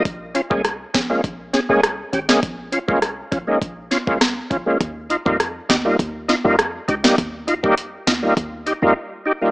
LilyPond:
<<
  \new Staff \with { instrumentName = "Tonewheel organ" } { \time 4/4 \key bes \dorian \tempo 4 = 101 r8 <des' f'>16 <aes bes des' aes'>16 r8 <des' aes'>16 <aes bes des' f'>16 r8 <des' aes'>16 <aes bes des' aes'>16 r8 <des' g'>16 <aes bes des' aes'>16 | r8 <des' f'>16 <aes bes des' f'>16 r8 <des' f'>16 <aes bes des' ees'>16 r8 <des' f'>16 <aes bes des' f'>16 r8 <des' f'>16 <aes bes des' f'>16 | r8 <ees' f'>16 <g bes ees' f'>16 r8 <ees' g'>16 <g bes ees' f'>16 r8 <ees' f'>16 <g bes ees' f'>16 r8 <ees' g'>16 <g bes ees' g'>16 | r8 <ees' f'>16 <g bes ees' g'>16 r8 <ees' f'>16 <g bes ees' f'>16 r8 <ees' g'>16 <g bes ees' f'>16 r8 <ees' g'>16 <g bes ees' f'>16 | }
  \new Staff \with { instrumentName = "808-style bass" } { \clef bass \time 4/4 \key bes \dorian bes,,8. c,8. bes,,8 bes,,8. c,8. aes,,8 | bes,,8. c,8. bes,,8 bes,,8. c,8. bes,,8 | ees,8. f,8. ees,8 ees,8. f,8. des,8 | ees,8. f,8. ees,8 ees,8. f,16 r4 | }
  \new DrumStaff \with { instrumentName = "Drums" } \drummode { \time 4/4 <hh bd>8 hh16 bd16 <hh ss>8 <hh bd sn>8 <hh bd>8 <hh sn>8 <hh ss>8 hh16 sn16 | <hh bd>8 hh16 bd16 <hh ss>8 <hh bd>8 <hh bd>8 <hh sn>16 bd16 <hh ss sn>8 <hh bd>8 | <hh bd>8 hh16 bd16 <hh ss>8 <hh bd sn>8 <hh bd>8 <hh sn>8 <hh ss>8 hh16 sn16 | <hh bd>8 hh16 bd16 hh8 <hh sn>8 <hh bd>8 hh8 r4 | }
>>